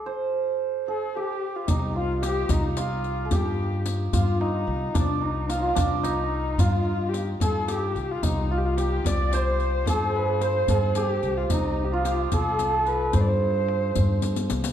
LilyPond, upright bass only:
\new Staff \with { instrumentName = "Upright bass" } { \clef bass \time 6/8 \tempo 4. = 73 r2. | c,4. c,4. | g,4. g,4 c,8 | c,4. c,4. |
g,4. g,4 c,8 | c,4. c,4. | g,4. g,4 c,8 | c,4. c,4. |
g,4. g,4 c,8 | }